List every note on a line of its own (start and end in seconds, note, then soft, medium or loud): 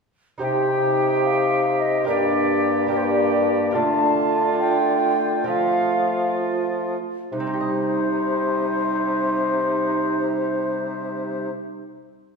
0.38 2.03 C3 medium
0.38 2.04 C3 soft
0.38 2.02 D#4 soft
0.38 2.03 D#4 medium
0.38 2.03 G4 soft
0.38 2.04 G4 medium
0.38 2.03 C5 soft
0.38 1.20 G5 medium
1.24 1.81 F5 medium
1.79 2.07 D#5 medium
2.04 3.71 G2 medium
2.04 3.70 G2 soft
2.04 2.89 A#3 soft
2.04 2.86 D4 soft
2.04 2.86 G4 soft
2.04 2.89 G4 medium
2.04 2.87 A#4 soft
2.04 2.88 D5 medium
2.87 3.70 D4 soft
2.87 3.71 G4 soft
2.87 3.76 G4 medium
2.87 3.71 A#4 soft
2.87 2.98 D5 medium
2.91 3.77 A#3 medium
2.96 3.05 C5 medium
3.03 3.75 D5 medium
3.71 5.41 D4 soft
3.71 5.42 F4 soft
3.71 5.46 F4 medium
3.71 5.43 A4 soft
3.71 4.58 A5 loud
3.75 5.44 D3 medium
3.75 5.43 D3 medium
3.75 5.47 A3 medium
4.59 5.45 G5 loud
5.44 6.97 F3 medium
5.44 6.97 F3 soft
5.44 6.98 A3 medium
5.44 7.27 C4 soft
5.44 7.27 F4 soft
5.44 6.97 F4 medium
5.44 7.28 A4 soft
5.44 6.36 F5 medium
7.32 11.49 C3 medium
7.32 11.49 C3 soft
7.32 11.49 G3 soft
7.32 11.49 D#4 medium
7.32 11.50 C5 medium
7.40 11.57 C4 medium
7.47 11.64 D#4 soft
7.53 7.60 G4 soft
7.61 11.77 D#5 soft